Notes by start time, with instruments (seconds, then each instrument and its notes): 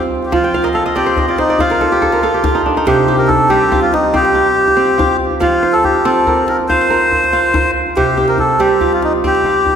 Already playing: kora C3 G3 C4 F4
0.00 djembe slap
0.12 djembe slap
0.23 melodica G4, djembe tone
0.32 kora F3, melodica F4, djembe slap, djembe bass
0.44 kora G5
0.54 kora F5, djembe tone
0.63 melodica A#4, kora D#5, djembe slap
0.74 melodica A4, kora F5
0.85 kora D#5, djembe slap, djembe tone
0.95 kora C4 D5, melodica G4, djembe slap
1.06 kora C5, djembe slap
1.17 kora D#5, djembe tone, djembe bass
1.29 melodica F4, kora D5
1.38 melodica D#4, kora C5, djembe slap
1.49 kora D5, djembe tone
1.59 kora F4 C5, melodica F4, djembe bass
1.70 kora A#4, djembe slap
1.81 kora A4, djembe tone
1.92 kora G4
2.02 kora A4, djembe bass
2.12 kora A#4, djembe slap
2.23 kora F4 A4, djembe slap
2.34 kora G4
2.44 kora F4, djembe slap, djembe tone, djembe bass
2.55 kora D#4
2.66 kora D4
2.76 kora D#4, djembe tone
2.87 kora C3 C5, melodica G4, djembe slap, djembe bass
3.08 kora G4, djembe tone
3.18 melodica A#4
3.27 melodica A4, djembe bass
3.40 djembe slap, djembe tone
3.50 kora G3 C4, melodica G4, djembe slap
3.61 djembe slap
3.72 kora F4, djembe tone, djembe bass
3.81 melodica F4
3.93 melodica D#4, djembe slap
4.04 djembe tone
4.14 kora C4, melodica G4, djembe bass
4.25 djembe slap
4.35 kora F4, djembe tone
4.68 djembe slap, djembe tone
4.77 kora C4, djembe slap
4.98 kora F4, djembe slap, djembe tone, djembe bass
5.10 djembe slap
5.20 djembe slap
5.31 djembe tone
5.40 kora F3 F5, melodica F4, djembe slap, djembe bass
5.52 djembe slap
5.63 kora C5, djembe slap, djembe tone
5.73 melodica A4, djembe slap
5.84 melodica G4, djembe bass
5.95 djembe tone
6.05 kora C4 F4, melodica A4, djembe slap
6.17 djembe slap
6.27 kora A#4, djembe tone, djembe bass
6.48 melodica A#4, djembe slap
6.59 djembe tone
6.68 kora F4, melodica C5, djembe bass
6.81 djembe slap
6.90 kora A#4, djembe slap, djembe tone
7.12 djembe slap, djembe bass
7.24 djembe slap, djembe tone
7.33 kora F4, djembe slap
7.54 kora A#4, djembe slap, djembe tone, djembe bass
7.86 djembe tone
7.97 kora C3 C5, melodica G4, djembe slap, djembe bass
8.17 kora G4, djembe tone
8.28 melodica A#4, djembe slap
8.38 melodica A4, djembe bass
8.49 djembe slap, djembe tone
8.60 kora G3 C4, melodica G4, djembe slap
8.70 djembe slap
8.81 kora F4, djembe tone, djembe bass
8.94 melodica F4
9.02 melodica D#4, djembe slap
9.13 djembe tone
9.24 kora C4, melodica G4, djembe bass
9.35 djembe slap
9.45 kora F4, djembe tone
9.66 djembe bass